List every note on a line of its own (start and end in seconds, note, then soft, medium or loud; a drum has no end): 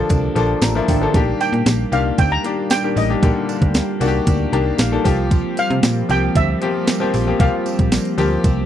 0.00 1.10 D3 medium
0.00 0.36 F3 medium
0.00 1.14 F3 medium
0.00 0.36 A#3 medium
0.00 8.66 A#3 medium
0.00 0.36 D4 medium
0.00 8.66 G4 medium
0.00 0.37 A4 loud
0.00 0.87 A4 medium
0.00 1.10 A4 medium
0.09 0.30 C2 loud
0.09 0.62 D4 medium
0.09 kick loud
0.09 closed hi-hat medium
0.09 tambourine soft
0.36 0.55 A#1 medium
0.36 0.69 F3 medium
0.36 0.69 A#3 medium
0.36 1.14 A#3 medium
0.36 0.69 D4 medium
0.36 0.69 A4 medium
0.36 closed hi-hat medium
0.36 tambourine soft
0.61 0.81 A1 medium
0.61 0.73 F3 medium
0.61 0.73 D4 medium
0.61 1.40 D4 medium
0.61 0.73 A4 medium
0.61 0.87 A#5 medium
0.61 snare loud
0.61 closed hi-hat medium
0.61 tambourine medium
0.75 0.97 F3 medium
0.75 0.97 A#3 medium
0.75 0.98 D4 medium
0.75 0.98 E4 medium
0.88 1.08 A1 medium
0.88 1.21 D#3 loud
0.88 1.21 D4 loud
0.88 1.21 A4 loud
0.88 1.19 A4 medium
0.88 1.13 G5 medium
0.88 kick medium
0.88 open hi-hat medium
0.88 tambourine soft
1.02 1.12 F3 medium
1.02 1.13 A#3 medium
1.02 1.13 D4 medium
1.02 1.13 A4 medium
1.14 1.34 A#1 loud
1.14 5.02 A#2 medium
1.14 1.81 D#3 medium
1.14 5.02 G3 medium
1.14 1.66 A#3 medium
1.14 1.81 A#3 medium
1.14 1.81 D4 medium
1.14 1.81 G4 loud
1.14 kick loud
1.14 closed hi-hat medium
1.14 tambourine soft
1.40 2.18 D4 medium
1.40 1.89 G5 medium
1.40 closed hi-hat medium
1.40 tambourine medium
1.53 1.63 A#2 loud
1.53 closed hi-hat soft
1.66 1.86 A#1 loud
1.66 2.44 A#3 medium
1.66 snare loud
1.66 closed hi-hat medium
1.66 tambourine medium
1.92 2.12 C2 medium
1.92 2.36 D#3 medium
1.92 2.37 A#3 medium
1.92 2.37 D4 medium
1.92 2.96 G4 medium
1.92 2.37 G4 medium
1.92 2.17 F5 medium
1.92 closed hi-hat medium
1.92 tambourine soft
2.18 2.38 D2 loud
2.18 2.31 C4 medium
2.18 2.32 G5 medium
2.18 kick loud
2.18 closed hi-hat medium
2.18 tambourine soft
2.31 2.69 D4 medium
2.31 2.72 A#5 loud
2.44 2.78 D#3 medium
2.44 3.22 A#3 medium
2.44 2.78 A#3 medium
2.44 2.78 D4 medium
2.44 2.78 G4 medium
2.44 closed hi-hat medium
2.44 tambourine soft
2.70 3.48 D4 medium
2.70 2.98 G5 loud
2.70 snare loud
2.70 closed hi-hat medium
2.70 tambourine medium
2.83 3.05 D#3 medium
2.83 3.06 A#3 medium
2.83 3.06 D4 medium
2.83 3.06 G4 medium
2.96 3.16 A1 medium
2.96 4.01 G4 medium
2.96 3.71 D#5 medium
2.96 open hi-hat medium
2.96 tambourine soft
3.09 3.20 D#3 medium
3.09 3.21 A#3 medium
3.09 3.21 D4 medium
3.09 3.21 G4 medium
3.22 3.33 A#1 loud
3.22 3.89 D3 medium
3.22 3.89 D#3 medium
3.22 3.89 A#3 medium
3.22 3.75 A#3 medium
3.22 3.89 G4 medium
3.22 kick loud
3.22 closed hi-hat medium
3.22 tambourine soft
3.49 4.26 D4 medium
3.49 closed hi-hat medium
3.49 tambourine medium
3.62 3.81 D2 medium
3.62 kick medium
3.62 closed hi-hat soft
3.74 4.53 A#3 medium
3.74 snare loud
3.74 closed hi-hat medium
3.74 tambourine medium
4.00 4.20 C2 medium
4.00 4.45 D#3 medium
4.00 4.45 A#3 medium
4.00 4.45 D4 medium
4.00 4.07 F#4 medium
4.00 5.34 G4 medium
4.00 closed hi-hat medium
4.00 tambourine medium
4.08 4.49 G4 loud
4.27 4.47 D2 loud
4.27 4.78 D4 medium
4.27 kick loud
4.27 closed hi-hat medium
4.27 tambourine soft
4.52 4.72 C2 medium
4.52 4.86 D#3 medium
4.52 4.86 A#3 medium
4.52 5.60 A#3 medium
4.52 4.86 D4 medium
4.52 4.86 G4 loud
4.52 4.77 A5 medium
4.52 closed hi-hat medium
4.78 4.99 A#1 medium
4.78 5.10 D4 medium
4.78 5.28 F5 medium
4.78 snare loud
4.78 closed hi-hat medium
4.78 tambourine medium
4.91 5.05 D#3 medium
4.91 5.03 A#3 medium
4.91 5.05 D4 medium
4.91 5.05 A4 medium
5.04 5.45 C2 medium
5.04 5.93 F3 medium
5.04 5.30 F3 medium
5.04 8.66 F3 medium
5.04 8.66 G3 medium
5.04 5.93 A#3 medium
5.04 5.94 C4 medium
5.04 8.66 C4 medium
5.04 5.94 G4 loud
5.04 kick medium
5.04 open hi-hat medium
5.04 tambourine soft
5.31 7.39 F3 medium
5.31 kick loud
5.31 closed hi-hat medium
5.31 tambourine soft
5.57 6.35 C4 medium
5.57 6.12 F5 loud
5.57 closed hi-hat medium
5.57 tambourine medium
5.70 5.80 C3 loud
5.70 closed hi-hat soft
5.83 6.03 A#2 medium
5.83 6.62 A#3 medium
5.83 snare loud
5.83 closed hi-hat medium
5.83 tambourine medium
6.09 6.29 C2 medium
6.09 6.54 F3 medium
6.09 6.54 A#3 medium
6.09 6.54 C4 medium
6.09 7.14 G4 medium
6.09 6.54 G4 medium
6.09 6.35 G5 loud
6.09 closed hi-hat medium
6.09 tambourine soft
6.35 6.55 D2 loud
6.35 6.87 C4 medium
6.35 7.44 E5 medium
6.35 kick loud
6.35 closed hi-hat medium
6.35 tambourine soft
6.61 6.95 F3 medium
6.61 6.95 A#3 medium
6.61 7.92 A#3 medium
6.61 6.95 C4 medium
6.61 6.95 G4 medium
6.61 closed hi-hat medium
6.87 7.65 C4 medium
6.87 snare loud
6.87 closed hi-hat loud
6.87 tambourine medium
7.00 7.23 F3 medium
7.00 7.23 A#3 medium
7.00 7.23 C4 medium
7.00 7.23 G4 medium
7.14 7.34 A#1 medium
7.14 8.18 G4 medium
7.14 open hi-hat medium
7.14 tambourine soft
7.27 7.38 F3 medium
7.27 7.38 A#3 medium
7.27 7.38 C4 medium
7.27 7.39 G4 medium
7.39 7.50 C2 loud
7.39 8.06 F3 medium
7.39 8.66 F3 medium
7.39 8.06 A#3 medium
7.39 8.06 C4 medium
7.39 8.07 G4 medium
7.39 8.66 F5 medium
7.39 kick loud
7.39 closed hi-hat medium
7.39 tambourine soft
7.66 8.43 C4 medium
7.66 closed hi-hat medium
7.66 tambourine medium
7.79 7.99 A#1 medium
7.79 kick medium
7.79 closed hi-hat soft
7.92 8.66 A#3 medium
7.92 snare loud
7.92 closed hi-hat medium
7.92 tambourine medium
8.05 closed hi-hat medium
8.18 8.38 D2 medium
8.18 8.62 F3 medium
8.18 8.29 G3 medium
8.18 8.62 A#3 medium
8.18 8.63 C4 medium
8.18 8.29 F4 medium
8.18 8.66 G4 medium
8.18 8.63 G4 loud
8.18 8.29 A#4 loud
8.18 closed hi-hat medium
8.18 tambourine soft
8.44 8.64 C2 medium
8.44 8.66 C4 medium
8.44 kick loud
8.44 closed hi-hat medium
8.44 tambourine soft